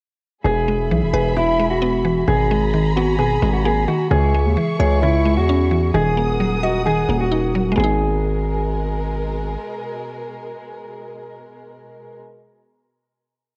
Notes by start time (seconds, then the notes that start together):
0.44 E1 B2 G#4 E5 B5
0.68 G#3
0.91 B1 E3
1.02 E1
1.13 E1 G#4 B4
1.37 B2 E4
1.59 G#3
1.70 F#4
1.82 B3
2.05 E3
2.28 G#1 B2 G#4 G#5 A#5 B5
2.51 G#3
2.74 D#3
2.96 B3 F#4
3.19 B2 G#4
3.42 G#1 G#3
3.54 F#4
3.65 A#3 G#4
3.88 D#3 F#4
4.11 C#2 C#3 G#4 E5 C#6
4.34 G#3
4.45 D#2
4.57 E3
4.79 C#2 G#4 C#5
5.02 C#3 E4
5.25 G#3
5.37 E2 F#4
5.49 C#4
5.71 E3
5.94 D#1 D#3 G#4 A#4 F#5 D#6
6.17 A#3
6.40 F#3
6.63 F#4 D#5
6.86 D#3 G#4
7.09 D#1 A#3
7.21 F#4
7.31 D#4
7.55 F#3
7.72 G#3
7.76 G#1 B2 G#3 A#3 B3 G#4 A#4
7.84 D#4